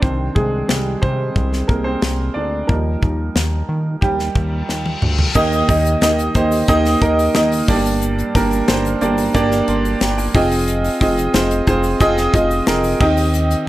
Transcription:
0.02 C2 D#3 C4 D4 C5, kick
0.35 C2 G#3 G#4, kick
0.68 C2 G3 G4, snare
1.02 C3 C4 C5, kick
1.36 C2, kick
1.53 snare
1.68 C2 A#3 A#4, kick
1.84 C4 C5
2.02 C2, snare
2.34 D2 D4 D5
2.67 D#2 F3 G3 A#3 D#4 A#4, kick
3.03 D#2, kick
3.35 D#2, snare
3.69 D#3
4.01 D#2 G3 G4, kick, reverse cymbal
4.19 snare
4.35 D#2, kick
4.69 D#2, snare
4.86 high tom
5.02 D2, mid tom
5.19 floor tom
5.35 D#2 D#3 A#3 D#4 G4 D#5, kick, crash, shaker
5.52 open hi-hat, shaker
5.69 D#2 A#3 D#4 G4 D#5, kick, hi-hat pedal, open hi-hat, shaker
5.85 hi-hat pedal, open hi-hat, shaker
6.02 D#2 A#3 D#4 G4 D#5, snare, hi-hat pedal, open hi-hat, shaker
6.18 hi-hat pedal, open hi-hat, shaker
6.35 D#2 A#3 D#4 G4 C5, kick, hi-hat pedal, open hi-hat, shaker
6.52 hi-hat pedal, open hi-hat, shaker
6.68 D#2 A#3 D#4 G4 D#5, kick, hi-hat pedal, open hi-hat, shaker
6.85 snare, hi-hat pedal, open hi-hat, shaker
7.02 D#2 A#3 D#4 G4 A#4, kick, hi-hat pedal, open hi-hat
7.19 hi-hat pedal, open hi-hat, shaker
7.35 D#2 A#3 D#4 G4 D#5, snare, hi-hat pedal, open hi-hat, shaker
7.52 hi-hat pedal, open hi-hat, shaker
7.68 G1 G2 A#3 D4 G4 D5, kick, hi-hat pedal, open hi-hat
7.85 hi-hat pedal, open hi-hat, shaker
8.02 hi-hat pedal, open hi-hat, shaker
8.18 hi-hat pedal, shaker
8.35 G1 A#3 D4 G4 A#4, kick, hi-hat pedal, open hi-hat, shaker
8.51 open hi-hat, shaker
8.68 G1 A#3 D4 G4 C5, snare, hi-hat pedal, open hi-hat, shaker
8.85 hi-hat pedal, open hi-hat, shaker
9.01 G1 A#3 D4 G4 D5, hi-hat pedal, open hi-hat, shaker
9.18 hi-hat pedal, open hi-hat, shaker
9.34 G1 A#3 D4 G4 D5, kick, hi-hat pedal, open hi-hat, shaker
9.51 snare, hi-hat pedal, shaker
9.68 G1 C6, hi-hat pedal, open hi-hat
9.85 open hi-hat, shaker
10.01 G1 G5 A#5, snare, hi-hat pedal, open hi-hat, shaker
10.18 G5, hi-hat pedal, open hi-hat, shaker
10.34 F1 C4 F4 G#4 D#5, kick, hi-hat pedal, open hi-hat
10.51 hi-hat pedal, open hi-hat, shaker
10.68 hi-hat pedal, open hi-hat, shaker
10.84 hi-hat pedal, open hi-hat, shaker
11.01 F1 C4 F4 G#4 D#5, kick, hi-hat pedal, open hi-hat, shaker
11.17 hi-hat pedal, open hi-hat, shaker
11.34 F1 C4 F4 G#4 C5, snare, hi-hat pedal, open hi-hat, shaker
11.51 hi-hat pedal, shaker
11.67 F1 C4 F4 G#4 C5, kick, hi-hat pedal, open hi-hat, shaker
11.83 open hi-hat, shaker
12.00 F1 C4 F4 G#4 D#5, kick, hi-hat pedal, open hi-hat, shaker
12.17 snare, hi-hat pedal, shaker
12.34 F1 C4 F4 G#4 D#5, kick, hi-hat pedal, open hi-hat
12.51 open hi-hat, shaker
12.67 F1 C4 F4 G#4 A#4, snare, hi-hat pedal, open hi-hat, shaker
12.84 hi-hat pedal, open hi-hat, shaker
13.00 D#2 D#3 C4 D#4 G4 D#5, kick, crash
13.17 hi-hat pedal, open hi-hat, shaker
13.34 hi-hat pedal, open hi-hat, shaker
13.51 hi-hat pedal, shaker

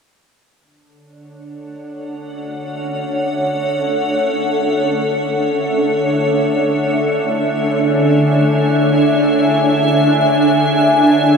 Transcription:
0.60 D3 D4
0.69 A4
0.78 C#5
1.05 F#5
2.00 E5
6.66 G#5
11.20 G#6

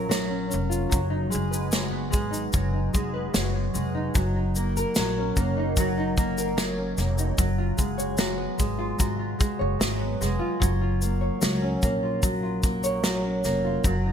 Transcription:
Already playing: A#1 C#4 F4 A#4
0.09 F#3, snare, shaker
0.29 C#4
0.50 F1 C#4, shaker
0.70 F4, shaker
0.89 F#1 F#3, kick, shaker
1.10 D#4
1.30 G#3, shaker
1.34 F#1
1.51 B4, shaker
1.71 F#3, snare, shaker
1.91 B3
2.11 G#1 G#3, kick, shaker
2.31 D#4, shaker
2.53 F#1 F#3, kick, shaker
2.73 D#4
2.93 F1 G#3, kick, shaker
3.14 B4
3.34 F#1 F#3, snare, shaker
3.54 B3
3.74 F1 G#3, shaker
3.95 D#4
4.14 F#1 F#3, kick, shaker
4.36 D#4
4.55 A#3, shaker
4.77 A#4, shaker
4.95 A#1 F#3, snare, shaker
5.18 C#4
5.37 F#1 A#3, kick, shaker
5.57 D#4
5.77 F#3, kick, shaker
5.98 D#4
6.17 A#3, kick, shaker
6.38 A#4, shaker
6.57 F#3, snare, shaker
6.77 C#4
6.97 F1 A#3, snare, shaker
7.18 D#4, shaker
7.38 F#1 F#3, kick, shaker
7.58 F4
7.77 F#1 G#3, kick, shaker
7.98 C#5, shaker
8.18 F#3, snare, shaker
8.38 B3
8.58 G#1 G#3, kick, shaker
8.79 F4
8.98 G#1 F#3, kick, shaker
9.19 F4
9.39 G#3, muted upright bass stroke, kick, shaker
9.59 F#1 C#5
9.79 G#1 F#3, snare, shaker
10.00 B3
10.21 F1 G#3, snare, shaker
10.39 F4
10.60 F#1 F#3, kick, shaker
10.82 F4
11.02 A#3, shaker
11.21 C#5
11.41 C#2 F#3, snare, shaker
11.62 C#4
11.82 A#1 A#3, kick, shaker
12.03 F4
12.23 F#3, kick, shaker
12.43 F4
12.63 A#3, kick, shaker
12.84 C#5, shaker
13.03 F#3, snare, shaker
13.23 C#4
13.44 F1 A#3, snare, shaker
13.65 F4
13.84 F#1 F#3, kick, shaker
14.06 D#4

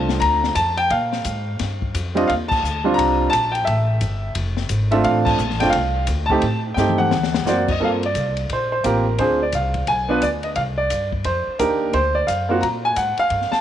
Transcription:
Already playing: C2 A3 C4 D4 F4
0.09 snare
0.20 D2 A#5, kick, ride
0.44 snare
0.55 F2 A5, kick, hi-hat pedal, ride
0.77 G5, ride
0.90 A#2 F5, kick, ride
1.13 snare
1.25 G#2, kick, hi-hat pedal, ride
1.59 G2, kick, snare, ride
1.82 kick
1.94 F2, kick, hi-hat pedal, ride
2.15 G3 C4 D4 F4 D#5, ride
2.28 D#2 F5, kick, ride
2.48 A5, kick, crash
2.63 D2, hi-hat pedal
2.84 G3 C4 D4 F4
2.94 A#5
2.98 C2, kick, ride
3.30 A#1 A5, kick, hi-hat pedal, ride
3.52 G5, ride
3.65 A1 E5, kick, ride
4.01 G1, kick, hi-hat pedal, ride
4.35 F1, kick, ride
4.57 snare
4.69 G#1, kick, hi-hat pedal, ride
4.91 A3 C4 D4 F4 E5, ride
5.04 A1 F5, kick, ride
5.25 A5, kick, crash
5.38 A#1, hi-hat pedal
5.50 A1, snare
5.60 F1 A3 C4 D4 F4 G5, snare, ride
5.70 C2 F5, kick, ride
6.07 D2, kick, hi-hat pedal, ride
6.26 A3 A5, kick
6.30 C4 D#4 G4
6.42 A2, kick, ride
6.74 G2 A3 C4 G5, snare, hi-hat pedal
6.78 D#4 G4
6.89 mid tom
6.98 F#5, mid tom
7.11 D2, snare
7.23 snare
7.34 snare
7.45 F#2 A#3 C4 F#4 C5 D5, snare, hi-hat pedal
7.68 D#5, kick, crash
7.80 G2 A#3 C4 F4 A4
7.84 F5
8.03 D5, ride
8.15 C2, kick, hi-hat pedal, ride
8.37 ride
8.50 A#1 C5, kick, ride
8.72 C5
8.84 A1 A#3 C4 F4 G4 A#4, kick, hi-hat pedal, ride
9.18 D2 C4 D4 F4 G#4 C5, kick, ride
9.43 D5
9.52 C2 F5, kick, hi-hat pedal, ride
9.74 kick, ride
9.87 B1 G#5, kick, ride
10.08 B3 D4 F4 B4
10.22 D2 D5, kick, hi-hat pedal, ride
10.43 D#5, ride
10.56 C2 F5, kick, ride
10.78 D5
10.90 G2, kick, hi-hat pedal, ride
11.12 kick
11.24 F2 C5, kick, ride
11.47 muted upright bass stroke
11.59 D#2 A#3 D4 D#4 G4 A#4, kick, hi-hat pedal, ride
11.93 D2 C5, kick, ride
12.15 D5
12.27 F#2 F5, kick, hi-hat pedal, ride
12.49 A#3 C4 F4 F#4
12.61 A#2 A#5, kick, ride
12.85 G#5
12.96 G#2 F#5, kick, hi-hat pedal, ride
13.17 F5, muted upright bass stroke, ride
13.30 G2, kick, ride
13.41 snare
13.52 A5, muted upright bass stroke, snare

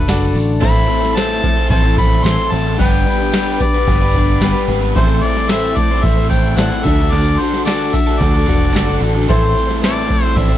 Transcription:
Already playing: B4
0.08 F#1 D3 A3 D4 F#4 A4 D5 F#5, snare, ride, tambourine
0.35 A1, ride, tambourine
0.60 A1 A2 E3 A3 C4 E4 A4 C5 B5, kick, tambourine, crash
0.76 tambourine
0.88 A3 C4 E4 C5, ride, tambourine
1.01 C4 E4 C5, snare, tambourine
1.14 A2 E3 A3 C4 E4 A4 C5 A5, snare, ride, tambourine
1.43 A3 C4 E4 A4, muted overdriven electric guitar stroke, kick, ride, tambourine
1.57 C4 E4 C5
1.70 A1 A3 C4 E4 A4 C5 A5, kick, ride
1.83 C4 E4 C5, tambourine
1.97 A3 C4 E4 A4 C5 B5, kick, ride, tambourine
2.11 tambourine
2.23 A1 A2 E3 A3 C4 E4 A4 C5 C6, snare, ride, tambourine
2.37 C4 E4 C5
2.51 A1 A3 C4 E4 C5 A5, ride, tambourine
2.65 C4 E4 C5, tambourine
2.77 G1 G3 B3 D4 G4 B4 G5, kick, ride, tambourine
2.93 tambourine
3.05 G3 B3 D4 B4, ride, tambourine
3.18 B3 D4 B4, tambourine
3.32 G3 B3 D4 G4 B4, snare, ride, tambourine
3.36 B4
3.59 D4 G4 B4 D5, muted overdriven electric guitar stroke, kick, ride, tambourine
3.74 B3 D4 B4
3.87 G1 G3 B3 D4 G4 B4, kick, ride
4.00 B3 D4 B4, tambourine
4.13 G3 D4 G4 B4, kick, ride, tambourine
4.17 B3 B4
4.28 tambourine
4.41 G1 G3 B3 D4 G4 B4, snare, ride, tambourine
4.45 B3 B4
4.55 B3 D4 B4, tambourine
4.68 G#1 G3 B3 D4 B4, ride, tambourine
4.81 B3 D4 B4, tambourine
4.94 A1 A2 E3 A3 C4 E4 A4 C5, kick, crash, tambourine
4.98 C5
5.09 tambourine
5.22 A3 C4 E4 C5 D5, ride, tambourine
5.35 C4 E4 C5, snare, tambourine
5.48 A2 E3 A3 C4 E4 A4 C5 E5, snare, ride, tambourine
5.53 C5
5.75 A3 C4 E4 A4 D5, muted overdriven electric guitar stroke, kick, ride, tambourine
5.91 C4 E4 C5
6.01 A1 A3 C4 E4 A4 C5 E5, kick, ride
6.17 C4 E4 C5, tambourine
6.28 A3 C4 E4 A4 G5, kick, ride, tambourine
6.32 C4 E4 C5
6.44 tambourine
6.56 A1 A2 E3 A3 C4 E4 A4 D5 F#5, snare, ride, tambourine
6.60 E4 C5
6.71 C4 E4 C5, tambourine
6.82 D2 D3 A3 D4 F#4 A4 E5, kick, ride, tambourine
6.86 D4 F#4 A4 D5
7.00 D4 F#4 A4
7.12 D2 D3 D4 F#4 A4 D5, ride, tambourine
7.24 tambourine
7.38 D3 D4 F#4 C5, ride, tambourine
7.42 A4
7.52 F#4 A4, snare, tambourine
7.57 D4
7.65 D3 A3 D4 F#4 A4 D5, snare, ride, tambourine
7.69 D4 F#4 A4
7.80 tambourine
7.92 D4 F#4 A4 E5, muted overdriven electric guitar stroke, kick, ride, tambourine
8.06 D4 F#4 A4, tambourine
8.20 D2 A3 D4 F#4 A4 D5, kick, ride, tambourine
8.33 D4 F#4 A4, tambourine
8.46 E1 D3 D4 F#4 A4, kick, ride, tambourine
8.73 F#1 D3 A3 D4 F#4 A4 D5, snare, ride, tambourine
8.87 D4 F#4 A4, tambourine
9.01 A1 D3 D4 F#4 A4, ride, tambourine
9.14 D4 F#4 A4, tambourine
9.27 A1 A2 E3 A3 C4 E4 A4 C5, kick, ride
9.54 A3 C4 E4 C5, ride
9.67 C4 E4 C5, snare
9.81 A2 E3 A3 C4 E4 A4 C5 D5, snare, ride
10.08 A3 C4 E4 A4, muted overdriven electric guitar stroke, kick, ride
10.21 C4 E4 C5
10.36 A1 A3 C4 E4 A4 D5 E5, kick, ride
10.49 C4 E4 C5

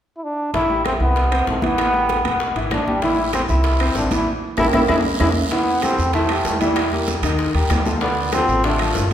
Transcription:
0.17 E4
0.24 D4
0.54 A1 E3 E4, high bongo, high conga, high timbale
0.70 G3 G4, high conga
0.85 C4, high bongo, high conga, high timbale, claves
1.00 C2 B3 E4 E5, high conga
1.16 high bongo, high conga, high timbale
1.31 C4 C5, high conga, high timbale, claves
1.47 A1 A3, high bongo, low bongo, high conga
1.62 E3 B3 E4, high conga, high timbale
1.78 high bongo, high conga, high timbale, claves
1.93 G3 G4, high bongo, high conga
2.09 high bongo, high conga, high timbale
2.24 E1 B3 B4, high bongo, high conga, high timbale, claves
2.40 high bongo, high conga
2.56 G#1 E3 E4, high bongo, high conga, high timbale
2.71 A1 D4, high bongo, low bongo, high conga, high timbale, claves
2.87 G3 G4, high conga
3.02 E3 E4, high bongo, high conga, high timbale, long guiro
3.18 G3 G4, high conga
3.33 C4, high bongo, high conga, high timbale, short guiro, claves
3.49 C2 E4 E5, high conga, short guiro
3.64 high bongo, high conga, high timbale, long guiro
3.80 C4 C5, high conga, high timbale, claves
3.95 A1 D4, high bongo, low bongo, high conga, short guiro
4.11 E3 E4, high conga, high timbale, short guiro
4.57 A1 E4 G4 A4, low bongo, high conga, high timbale, long guiro, claves
4.73 A1 E4 G4 A4, low bongo, high conga, high timbale, long guiro, claves
4.88 E2 D4 E4 G#4, low bongo, high conga, high timbale, long guiro, claves
5.20 E2 D4 E4 G#4, low bongo, high conga, high timbale, long guiro, claves
5.51 E3 B3 E4 E5, high bongo, high conga, high timbale, long guiro
5.68 high conga
5.82 G3 C4 G4 A4, high bongo, high conga, high timbale, short guiro, claves
5.98 E2, high conga, short guiro
6.13 E3 A3 E4 E5, high bongo, high conga, high timbale, long guiro
6.29 G3 G4 A4, high conga, high timbale, claves
6.45 E2, high bongo, low bongo, high conga, low timbale, short guiro
6.61 E3 G3 E4 E5, high conga, high timbale, short guiro
6.76 high bongo, high conga, high timbale, long guiro, claves
6.92 G3 G4 A#4, high bongo, high conga
7.07 high bongo, high conga, high timbale, short guiro
7.22 D#2 D#3 D#4 D#5, high bongo, high conga, high timbale, short guiro, claves
7.39 high bongo, high conga, long guiro
7.54 D#2 G3 G4 A#4, high bongo, high conga, high timbale
7.70 D2, high bongo, low bongo, high conga, high timbale, low timbale, short guiro, claves
7.86 F3 F4 A4, high conga, short guiro
8.01 D3 B3 D4 D5, high bongo, high conga, high timbale, long guiro
8.18 high conga
8.32 F3 C4 F4 A4, high bongo, high conga, high timbale, short guiro, claves
8.48 A1, high conga, short guiro
8.64 D3 A3 D4 D5, high bongo, high conga, high timbale, long guiro
8.79 F3 F4 A4, high conga, high timbale, claves
8.95 G1, high bongo, low bongo, high conga, short guiro

